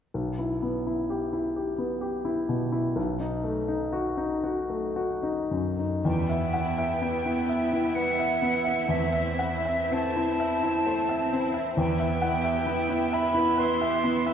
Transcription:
0.14 B1
0.39 E4
0.63 B3
0.87 E4
1.10 G4
1.33 E4
1.56 G4
1.78 B3
2.01 G4
2.25 E4
2.49 B2
2.72 E4
2.96 B1
3.20 D#4
3.44 A3
3.68 D#4
3.93 F#4
4.17 D#4
4.44 F#4
4.69 A3
4.96 F#4
5.23 D#4
5.51 F#2
5.79 D#4
6.05 E2 G3 B3 E4 E5 G5
6.29 B3 E5
6.53 E4 F#5
6.77 B3 E5
7.01 G3 B3
7.24 B3 E4
7.46 E4 E5
7.70 B3 E4
7.94 G3 B4 F#5
8.17 B3 E5
8.40 B3 E4
8.64 B3 E5
8.87 E2 A3 C4 E5
9.11 C4 E5
9.38 E4 F#5
9.65 C4 E5
9.91 A3 C4 A5
10.15 C4 E4
10.39 E4 E5
10.61 C4 E4
10.85 A3 C5
11.09 C4 E5
11.32 C4 E4
11.54 C4 E5
11.77 E2 G3 B3 E4 E5 G5
12.00 B3 E5
12.22 E4 F#5
12.44 G4 E5
12.66 B3 E4
12.90 B3 E4
13.12 G3 E5 B5
13.34 B3 E4
13.57 E4 B4 C6
13.81 G4 E5
14.03 B3 E4
14.26 B3 E5

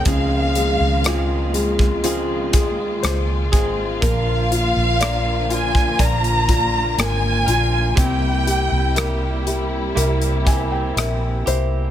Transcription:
Already playing: D#3 A#3
0.05 C#2 C#3 F3 G#3 C4 F4 G#4 F5, kick, closed hi-hat
0.55 G#3, closed hi-hat
0.80 C#2
1.04 F3 G#3 C4 F4 G#4, cross-stick, closed hi-hat
1.54 G#3, closed hi-hat
1.79 kick
2.03 C#3 F3 G#3 C4 F4 G#4, closed hi-hat
2.53 G#3 C4 G#4, kick, closed hi-hat
3.03 C#2 C5, cross-stick, closed hi-hat
3.52 G#1 G#3 C4 G#4, kick, closed hi-hat
4.01 A#1 A#2 D3 F3 A#3 D4 A#4 F5, kick, closed hi-hat
4.51 F4, closed hi-hat
4.76 A#1
5.00 F3 A#3 D4 A#4 D5, cross-stick, closed hi-hat
5.50 F4 G#5, closed hi-hat
5.75 kick
5.99 A#1 A#2 F3 A#3 D4 A#4 D5 A#5, kick, closed hi-hat
6.24 closed hi-hat
6.47 A#3 D4 F4 A#4, kick, closed hi-hat
6.98 G#1 A#3 G#5, cross-stick, closed hi-hat
7.46 A#1 A#3 D4 F4 A#4, closed hi-hat
7.95 C2 C3 G3 A#3 C4 E4 G4 G5, kick, closed hi-hat
8.47 G4, closed hi-hat
8.72 C2
8.95 G3 A#3 E4 G4 A#4, cross-stick, closed hi-hat
9.47 G4, closed hi-hat
9.95 C2 C3 G3 A#3 C4 E4 G4 A#4, closed hi-hat
10.22 closed hi-hat
10.45 A#3 E4 G4 E5 G#5, kick, closed hi-hat
10.72 G5
10.96 A#1 A#4 E5, cross-stick, closed hi-hat
11.46 C2 A#3 E4 G4 C5 E5, closed hi-hat

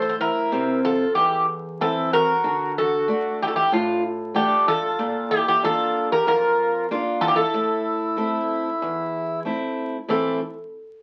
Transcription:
Already playing: A2 A4
0.02 C5
0.09 C5
0.20 E4 A#4
0.52 C3 C4
0.84 F4 A4
1.15 E2 E4 G4
1.81 E3 C4 E4 A4
2.13 F#4 A#4
2.44 D3
2.78 F#4 A4
3.08 A3 D4 F#4
3.42 E4 G4
3.47 F#4 A4
3.54 E4 G4
3.72 A2 D4 F4
4.35 A3 D4 G4 A4
4.67 F4 A4
4.99 A#2
5.30 E4 G4
5.47 E4 G4
5.62 A#3 D4 F4 A4
6.11 G4 A#4
6.26 F2 F4 A#4
6.91 A#3 D4 F4
7.19 F4 A4
7.28 E4 G4
7.34 E4 A4
7.54 A2
8.17 A3 C4 E4
8.82 E2
9.45 A3 C4 E4
10.08 A2 E3 A3 C4 E4 A4

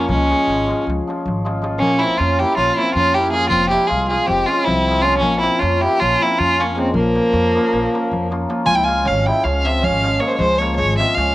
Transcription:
Already playing: F2 F3 A#3
0.01 darbuka tek
0.09 C#2 G#3 C#4, darbuka dum
0.30 F3 G#3 C#4 F4, darbuka tek
0.47 G#1, darbuka tek
0.60 darbuka tek
0.67 F3 G#3 C#4 F4, darbuka tek
0.87 C#2, darbuka tek, darbuka dum
1.07 F3 G#3 C#4 F4, darbuka tek
1.26 G#1, darbuka dum
1.36 darbuka tek
1.45 F3 G#3 C#4 F4, darbuka tek
1.62 F3 G#3 C#4 F4, darbuka tek
1.72 darbuka tek
1.79 A#1 A#3 C#4, darbuka dum
1.99 F3 A#3 C4 C#4 E4 F4, darbuka tek
2.17 F2 C#4 F4, darbuka tek
2.39 F3 A#3 C#4 E4 F4 G4, darbuka tek
2.49 darbuka tek
2.57 A#1 C#4 F4, darbuka tek, darbuka dum
2.68 darbuka tek
2.73 C#4 E4 F4
2.77 F3 A#3 C4 C#4 F4, darbuka tek
2.94 F2 C#4 F4, darbuka dum
3.14 F3 A#3 C#4 E4 F4 G4
3.25 darbuka tek
3.31 F3 A#3 C#4 F4 G#4, darbuka tek
3.43 darbuka tek
3.49 F1 C4 F4, darbuka dum
3.69 F3 G#3 C4 E4 F4 G4, darbuka tek
3.81 darbuka tek
3.87 C2 F4 G#4, darbuka tek
4.08 F3 G#3 F4 G#4, darbuka tek
4.12 C4 F4
4.19 darbuka tek
4.26 F1 C4 G4, darbuka tek, darbuka dum
4.46 C#4 F4, darbuka tek
4.51 F3 G#3 C4 F4
4.64 C2 C4 E4, darbuka dum
4.88 F3 G#3 C4 F4, darbuka tek
4.97 C#4, darbuka tek
5.02 F4, darbuka tek
5.06 F3 G#3 C4 F4
5.15 C#4, darbuka tek
5.20 A#1 A#3, darbuka dum
5.40 C4 E4, darbuka tek
5.45 F3 A#3 C#4 F4
5.53 darbuka tek
5.58 C#4 F4, darbuka tek
5.62 F2
5.79 E4 G4, darbuka tek
5.83 F3 A#3 C#4 F4
5.94 darbuka tek
5.99 A#1 C#4 F4, darbuka tek, darbuka dum
6.12 darbuka tek
6.20 F3 A#3 C4 C#4 E4, darbuka tek
6.24 F4
6.38 F2 C#4 F4, darbuka dum
6.58 F3 A#3 C#4 F4, darbuka tek
6.70 A#3, darbuka tek
6.75 F3 G#3 A#3 C4 C#4 F4, darbuka tek
6.87 darbuka tek
6.94 A#1 F3 A#3, darbuka dum
7.07 darbuka tek
7.15 F3 A#3 C#4 F4, darbuka tek
7.33 F2, darbuka tek
7.55 F3 A#3 C#4 F4
7.64 darbuka tek
7.73 A#1, darbuka tek
7.93 F3 A#3 C#4 F4, darbuka tek
8.04 darbuka tek
8.11 F2, darbuka dum
8.24 darbuka tek
8.31 F3 A#3 C#4 F4, darbuka tek
8.49 F3 A#3 C#4 F4, darbuka tek
8.65 C#2 F4 G#5, darbuka dum
8.75 E4 G5
8.84 F4 G#5
8.88 F3 G#3 C#4 F4, darbuka tek
8.98 darbuka tek
9.05 G#1 C#4 F5, darbuka tek
9.26 F3 G#3 C#4 E4 F4 G5, darbuka tek
9.37 darbuka tek
9.44 C#2 C#4 F5, darbuka tek
9.64 F3 G#3 C4 C#4 F4 E5, darbuka tek
9.82 G#1 C#4 F5, darbuka dum
9.93 darbuka tek
10.03 F3 G#3 C#4 F4, darbuka tek
10.19 F3 G#3 A#3 C#4 F4 C#5, darbuka tek
10.24 G#3 A#3 C5
10.30 C#5
10.38 C#2 G#3 C5, darbuka dum
10.52 darbuka tek
10.58 F3 G#3 A#3 C#4 F4 C#5, darbuka tek
10.76 G#1 G#3 C#5, darbuka tek
10.98 F3 G#3 C4 C#4 F4 E5, darbuka tek
11.14 C#2 C#4 F5, darbuka tek

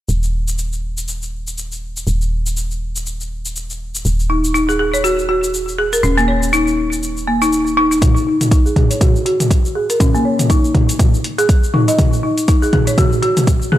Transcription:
0.09 D#1, shaker
0.23 shaker
0.48 shaker
0.58 shaker
0.73 shaker
0.97 shaker
1.08 shaker
1.22 shaker
1.47 shaker
1.58 shaker
1.72 shaker
1.97 shaker
2.07 D#1, shaker
2.21 shaker
2.46 shaker
2.57 shaker
2.71 shaker
2.96 shaker
3.06 shaker
3.21 shaker
3.45 shaker
3.56 shaker
3.70 shaker
3.95 shaker
4.05 D#1, shaker
4.20 shaker
4.30 D#4
4.44 shaker
4.54 D#4, shaker
4.69 G#4, shaker
4.79 G#4
4.94 C#5, shaker
5.04 F#4, shaker
5.19 shaker
5.29 F#4
5.44 shaker
5.54 shaker
5.68 shaker
5.78 G#4
5.93 A#4, shaker
6.03 D#1 C#4, shaker
6.18 A#3, shaker
6.28 C#5
6.43 shaker
6.53 D#4, shaker
6.68 shaker
6.92 shaker
7.03 shaker
7.17 shaker
7.28 A#3
7.42 D#4, shaker
7.53 shaker
7.67 shaker
7.77 D#4
7.91 D#4, shaker
8.02 kick, closed hi-hat, mid tom, shaker
8.17 shaker
8.27 D#4
8.41 closed hi-hat, mid tom, shaker
8.51 D#4, kick, closed hi-hat, shaker
8.66 G#4, shaker
8.76 G#4, kick, closed hi-hat, mid tom
8.90 C#5, closed hi-hat, shaker
9.01 F#4, kick, closed hi-hat, mid tom, shaker
9.16 shaker
9.26 F#4, closed hi-hat
9.40 closed hi-hat, mid tom, shaker
9.51 kick, closed hi-hat, shaker
9.65 shaker
9.75 G#4
9.90 A#4, closed hi-hat, shaker
10.00 C#4, kick, closed hi-hat, mid tom, shaker
10.14 A#3, shaker
10.25 C#5
10.39 closed hi-hat, mid tom, shaker
10.50 D#4, kick, closed hi-hat, shaker
10.64 shaker
10.75 kick, closed hi-hat, mid tom
10.89 closed hi-hat, shaker
10.99 kick, closed hi-hat, mid tom, shaker
11.14 shaker
11.24 closed hi-hat
11.38 G#4, closed hi-hat, shaker
11.49 kick, closed hi-hat, shaker
11.64 shaker
11.74 D#4, mid tom
11.88 D#5, closed hi-hat, shaker
11.99 kick, closed hi-hat, mid tom, shaker
12.13 shaker
12.23 D#4
12.38 closed hi-hat, shaker
12.48 D#4, kick, closed hi-hat, shaker
12.62 G#4, shaker
12.73 G#4, kick, closed hi-hat, mid tom
12.87 C#5, closed hi-hat, shaker
12.98 F#4, kick, closed hi-hat, mid tom, shaker
13.12 shaker
13.22 F#4, closed hi-hat
13.37 closed hi-hat, mid tom, shaker
13.47 kick, closed hi-hat, shaker
13.62 shaker
13.72 G#4, mid tom

